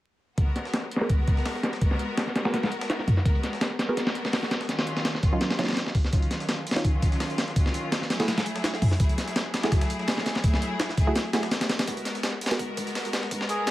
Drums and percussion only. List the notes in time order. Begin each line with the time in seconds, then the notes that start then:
0.38 kick, closed hi-hat
0.47 closed hi-hat
0.56 snare, closed hi-hat
0.65 snare, closed hi-hat
0.74 snare, closed hi-hat
0.91 closed hi-hat
0.96 snare, closed hi-hat
1.01 snare, closed hi-hat
1.09 kick, closed hi-hat
1.27 kick, closed hi-hat
1.37 snare, closed hi-hat
1.46 snare, closed hi-hat, open hi-hat
1.55 snare, closed hi-hat
1.63 snare, closed hi-hat
1.73 snare
1.81 kick, closed hi-hat
1.91 snare
1.99 closed hi-hat
2.18 snare, closed hi-hat
2.27 snare
2.36 snare, closed hi-hat
2.45 snare, closed hi-hat
2.54 snare, closed hi-hat
2.63 snare, closed hi-hat
2.72 closed hi-hat
2.81 snare
2.90 snare, closed hi-hat
2.99 snare
3.08 kick, closed hi-hat, open hi-hat
3.17 snare
3.25 kick, closed hi-hat
3.35 closed hi-hat
3.44 snare, closed hi-hat
3.53 snare, closed hi-hat
3.61 snare, closed hi-hat
3.79 snare, closed hi-hat
3.97 snare, closed hi-hat
4.07 snare, closed hi-hat
4.15 closed hi-hat
4.25 snare, closed hi-hat
4.33 snare, closed hi-hat, open hi-hat
4.43 snare
4.51 snare, closed hi-hat
4.61 snare
4.69 snare, closed hi-hat
4.79 snare, closed hi-hat
4.87 closed hi-hat
4.97 snare, closed hi-hat
5.05 snare, closed hi-hat
5.15 snare
5.23 kick, closed hi-hat
5.41 snare, closed hi-hat
5.50 snare, closed hi-hat
5.59 snare, closed hi-hat
5.64 snare, closed hi-hat
5.68 snare, closed hi-hat
5.73 snare, closed hi-hat
5.77 snare, closed hi-hat
5.87 snare
5.95 kick, closed hi-hat, open hi-hat
6.05 snare
6.13 kick, closed hi-hat
6.22 closed hi-hat
6.31 snare, closed hi-hat
6.40 snare, closed hi-hat
6.49 snare, closed hi-hat
6.67 closed hi-hat
6.71 snare, closed hi-hat
6.76 snare, closed hi-hat
6.84 kick, closed hi-hat
7.02 kick, closed hi-hat
7.12 snare, closed hi-hat
7.20 snare, closed hi-hat, open hi-hat
7.30 snare, closed hi-hat
7.38 snare, closed hi-hat
7.48 snare
7.56 kick, closed hi-hat
7.66 snare
7.74 closed hi-hat
7.92 snare, closed hi-hat
8.02 snare
8.10 snare, closed hi-hat
8.20 snare, closed hi-hat
8.28 snare, closed hi-hat
8.38 snare, closed hi-hat
8.46 closed hi-hat
8.56 snare
8.64 snare, closed hi-hat
8.74 snare
8.82 kick, closed hi-hat, open hi-hat
8.91 snare
9.00 kick, closed hi-hat
9.09 closed hi-hat
9.18 snare, closed hi-hat
9.28 snare, closed hi-hat
9.36 snare, closed hi-hat
9.54 snare, closed hi-hat
9.63 snare, closed hi-hat
9.72 kick, snare, closed hi-hat
9.81 snare, closed hi-hat
9.90 closed hi-hat
9.99 snare
10.08 snare, closed hi-hat, open hi-hat
10.17 snare
10.26 snare, closed hi-hat
10.35 snare
10.44 kick, closed hi-hat
10.54 snare
10.62 closed hi-hat
10.80 snare, closed hi-hat
10.89 snare
10.98 kick, closed hi-hat
11.16 snare, closed hi-hat
11.25 snare
11.33 snare, closed hi-hat
11.43 snare
11.51 snare, closed hi-hat
11.61 snare, closed hi-hat
11.69 snare, closed hi-hat
11.79 snare, closed hi-hat
11.87 kick, closed hi-hat
11.97 closed hi-hat
12.05 snare, closed hi-hat
12.15 snare, closed hi-hat
12.23 snare, closed hi-hat
12.41 closed hi-hat
12.46 snare, closed hi-hat
12.51 snare, closed hi-hat
12.59 kick, closed hi-hat
12.77 kick, closed hi-hat
12.87 snare, closed hi-hat
12.95 snare, closed hi-hat, open hi-hat
13.05 snare, closed hi-hat
13.13 snare, closed hi-hat
13.23 snare
13.31 kick, closed hi-hat
13.41 snare
13.49 closed hi-hat
13.67 snare, closed hi-hat